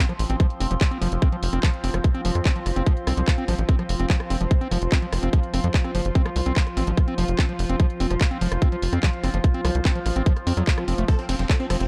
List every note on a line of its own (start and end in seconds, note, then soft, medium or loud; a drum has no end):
0.00 11.07 F3 medium
0.00 4.53 C4 medium
0.00 11.88 F4 medium
0.00 11.88 C5 medium
0.00 11.55 F5 medium
0.00 11.88 C6 medium
0.09 0.13 F3 medium
0.09 cross-stick soft
0.09 closed hi-hat soft
0.19 0.25 A1 loud
0.19 open hi-hat loud
0.30 0.35 A1 medium
0.30 0.36 C4 loud
0.30 closed hi-hat medium
0.40 0.47 F3 loud
0.40 kick loud
0.40 cross-stick soft
0.40 closed hi-hat medium
0.50 closed hi-hat soft
0.60 0.66 F1 medium
0.60 0.67 C4 loud
0.60 open hi-hat loud
0.71 0.77 F1 medium
0.71 0.75 F3 medium
0.71 closed hi-hat medium
0.81 kick loud
0.81 cross-stick medium
0.81 clap loud
0.81 closed hi-hat medium
0.91 0.98 C4 loud
0.91 closed hi-hat soft
1.02 1.07 F1 medium
1.02 1.08 F3 loud
1.02 open hi-hat loud
1.12 1.18 F1 medium
1.12 closed hi-hat medium
1.22 1.29 C4 loud
1.22 kick loud
1.22 cross-stick soft
1.22 closed hi-hat medium
1.32 1.36 F3 medium
1.32 closed hi-hat soft
1.43 1.48 F1 loud
1.43 open hi-hat loud
1.53 1.59 F1 medium
1.53 1.60 C4 loud
1.53 cross-stick soft
1.53 closed hi-hat medium
1.63 1.70 F3 loud
1.63 kick loud
1.63 clap loud
1.63 closed hi-hat medium
1.73 closed hi-hat soft
1.84 1.90 F1 loud
1.84 1.91 C4 loud
1.84 open hi-hat loud
1.94 2.00 F1 medium
1.94 1.98 F3 medium
1.94 cross-stick medium
1.94 closed hi-hat soft
2.04 kick loud
2.04 closed hi-hat medium
2.15 2.21 C4 loud
2.15 closed hi-hat soft
2.25 2.31 F1 medium
2.25 2.32 F3 loud
2.25 open hi-hat loud
2.35 2.41 F2 medium
2.35 cross-stick soft
2.35 closed hi-hat soft
2.45 2.52 C4 loud
2.45 kick loud
2.45 clap loud
2.45 closed hi-hat medium
2.56 2.60 F3 medium
2.56 closed hi-hat soft
2.66 2.72 F#1 loud
2.66 cross-stick soft
2.66 open hi-hat medium
2.76 2.82 F#1 medium
2.76 2.83 C4 loud
2.76 closed hi-hat medium
2.86 2.93 F3 loud
2.86 kick loud
2.86 closed hi-hat medium
2.97 closed hi-hat soft
3.07 3.13 C2 loud
3.07 3.14 C4 loud
3.07 cross-stick medium
3.07 open hi-hat loud
3.17 3.23 C2 medium
3.17 3.21 F3 medium
3.17 closed hi-hat medium
3.28 kick loud
3.28 clap loud
3.28 closed hi-hat soft
3.38 3.45 C4 loud
3.38 closed hi-hat soft
3.48 3.54 A1 medium
3.48 3.55 F3 loud
3.48 cross-stick soft
3.48 open hi-hat loud
3.58 3.64 A1 medium
3.58 closed hi-hat medium
3.69 3.75 C4 loud
3.69 kick loud
3.69 closed hi-hat medium
3.79 3.83 F3 medium
3.79 cross-stick soft
3.79 closed hi-hat soft
3.89 3.95 F1 medium
3.89 open hi-hat loud
4.00 4.05 F1 medium
4.00 4.06 C4 loud
4.00 closed hi-hat medium
4.10 4.17 F3 loud
4.10 kick loud
4.10 clap loud
4.10 closed hi-hat soft
4.20 cross-stick medium
4.20 closed hi-hat soft
4.30 4.36 F1 loud
4.30 4.37 C4 loud
4.30 open hi-hat medium
4.41 4.46 F1 medium
4.41 4.45 F3 medium
4.41 closed hi-hat soft
4.51 11.11 F4 medium
4.51 kick loud
4.51 closed hi-hat soft
4.61 4.68 C4 loud
4.61 closed hi-hat soft
4.71 4.77 F1 loud
4.71 4.78 F3 loud
4.71 cross-stick soft
4.71 open hi-hat loud
4.82 4.88 F1 medium
4.82 closed hi-hat medium
4.92 4.99 C4 loud
4.92 kick loud
4.92 clap loud
4.92 closed hi-hat soft
5.02 5.06 F3 medium
5.02 closed hi-hat soft
5.13 5.18 F1 medium
5.13 cross-stick medium
5.13 open hi-hat loud
5.23 5.29 F1 medium
5.23 5.30 C4 loud
5.23 closed hi-hat soft
5.33 5.40 F3 loud
5.33 kick loud
5.33 closed hi-hat medium
5.43 closed hi-hat soft
5.54 5.59 F1 medium
5.54 5.60 C4 loud
5.54 cross-stick soft
5.54 open hi-hat loud
5.64 5.70 F2 medium
5.64 5.68 F3 medium
5.64 closed hi-hat soft
5.74 kick loud
5.74 clap loud
5.74 closed hi-hat soft
5.84 5.91 C4 loud
5.84 cross-stick soft
5.84 closed hi-hat soft
5.95 6.01 F#1 loud
5.95 6.01 F3 loud
5.95 open hi-hat medium
6.05 6.11 F#1 medium
6.05 closed hi-hat soft
6.15 6.22 C4 loud
6.15 kick loud
6.15 closed hi-hat soft
6.26 6.30 F3 medium
6.26 cross-stick medium
6.26 closed hi-hat soft
6.36 6.42 C2 loud
6.36 open hi-hat loud
6.46 6.52 C2 medium
6.46 6.53 C4 loud
6.46 closed hi-hat medium
6.56 6.63 F3 loud
6.56 kick loud
6.56 clap loud
6.56 closed hi-hat medium
6.67 cross-stick soft
6.67 closed hi-hat soft
6.77 6.83 A1 loud
6.77 6.84 C4 loud
6.77 open hi-hat medium
6.87 6.93 A1 medium
6.87 6.91 F3 medium
6.87 closed hi-hat medium
6.97 kick loud
6.97 cross-stick soft
6.97 closed hi-hat medium
7.08 7.14 C4 loud
7.08 closed hi-hat soft
7.18 7.24 F1 medium
7.18 7.25 F3 loud
7.18 open hi-hat loud
7.28 7.34 F1 medium
7.28 closed hi-hat medium
7.39 7.45 C4 loud
7.39 kick loud
7.39 cross-stick medium
7.39 clap loud
7.39 closed hi-hat medium
7.49 7.53 F3 medium
7.49 closed hi-hat soft
7.59 7.65 F1 loud
7.59 open hi-hat medium
7.69 7.75 F1 medium
7.69 7.76 C4 loud
7.69 closed hi-hat medium
7.80 7.86 F3 loud
7.80 kick loud
7.80 cross-stick soft
7.80 closed hi-hat medium
7.90 closed hi-hat soft
8.00 8.06 F1 loud
8.00 8.07 C4 loud
8.00 open hi-hat loud
8.10 8.16 F1 medium
8.10 8.15 F3 medium
8.10 cross-stick soft
8.10 closed hi-hat medium
8.21 kick loud
8.21 clap loud
8.21 closed hi-hat medium
8.31 8.38 C4 loud
8.31 closed hi-hat soft
8.41 8.47 F1 loud
8.41 8.48 F3 loud
8.41 open hi-hat medium
8.52 8.57 F1 medium
8.52 cross-stick medium
8.52 closed hi-hat medium
8.62 8.69 C4 loud
8.62 kick loud
8.62 closed hi-hat medium
8.72 8.76 F3 medium
8.72 closed hi-hat soft
8.82 8.88 F1 medium
8.82 open hi-hat loud
8.93 8.98 F2 medium
8.93 8.99 C4 loud
8.93 cross-stick soft
8.93 closed hi-hat medium
9.03 9.10 F3 loud
9.03 kick loud
9.03 clap loud
9.03 closed hi-hat medium
9.13 closed hi-hat soft
9.23 9.29 F#1 medium
9.23 9.30 C4 loud
9.23 cross-stick soft
9.23 open hi-hat medium
9.34 9.40 F#1 medium
9.34 9.38 F3 medium
9.34 closed hi-hat medium
9.44 kick loud
9.44 closed hi-hat medium
9.54 9.61 C4 loud
9.54 closed hi-hat soft
9.65 9.70 C2 loud
9.65 9.71 F3 loud
9.65 cross-stick medium
9.65 open hi-hat loud
9.75 9.81 C2 medium
9.75 closed hi-hat medium
9.85 9.92 C4 loud
9.85 kick loud
9.85 clap loud
9.85 closed hi-hat medium
9.95 9.99 F3 medium
9.95 closed hi-hat soft
10.06 10.12 A1 medium
10.06 cross-stick soft
10.06 open hi-hat medium
10.16 10.22 A1 medium
10.16 10.23 C4 loud
10.16 closed hi-hat medium
10.26 10.33 F3 loud
10.26 kick loud
10.26 closed hi-hat medium
10.26 swell medium
10.37 cross-stick soft
10.37 closed hi-hat soft
10.47 10.53 F2 medium
10.47 10.54 C4 medium
10.47 open hi-hat loud
10.57 10.63 F2 medium
10.57 10.64 F#3 loud
10.57 closed hi-hat medium
10.67 kick loud
10.67 clap loud
10.67 closed hi-hat medium
10.78 10.84 F3 medium
10.78 cross-stick medium
10.78 closed hi-hat soft
10.88 10.94 F1 loud
10.88 10.95 C4 medium
10.88 open hi-hat medium
10.98 11.04 F1 medium
10.98 11.05 A3 medium
10.98 closed hi-hat medium
11.08 11.15 F3 loud
11.08 11.88 F3 medium
11.08 11.88 C4 medium
11.08 11.13 A4 loud
11.08 kick loud
11.08 closed hi-hat medium
11.19 11.24 C4 medium
11.19 closed hi-hat soft
11.29 11.35 F1 loud
11.29 11.34 C4 medium
11.29 11.36 C4 loud
11.29 cross-stick soft
11.29 open hi-hat loud
11.29 ride medium
11.39 11.45 F1 medium
11.39 11.43 F3 medium
11.39 11.44 C4 medium
11.39 11.88 E5 medium
11.39 closed hi-hat medium
11.49 11.54 F#3 loud
11.49 11.54 A4 loud
11.49 kick loud
11.49 clap loud
11.49 closed hi-hat medium
11.60 11.65 C4 medium
11.60 11.67 C4 loud
11.60 closed hi-hat soft
11.70 11.76 F1 loud
11.70 11.77 F3 loud
11.70 11.75 C4 medium
11.70 cross-stick medium
11.70 open hi-hat loud
11.70 ride medium
11.80 11.86 F1 medium
11.80 11.85 C4 medium
11.80 closed hi-hat medium